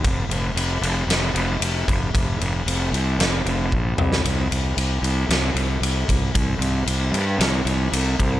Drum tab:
RD |x-x-x-x-x-x-x-x-|x-x-x-x-x-x-----|x-x-x-x-x-x-x-x-|x-x-x-x-x-x-x-x-|
SD |--------o-------|--------o------o|--------o-------|--------o-------|
T2 |----------------|--------------o-|----------------|----------------|
BD |o-------------o-|o-----------o---|--------------o-|o-------------o-|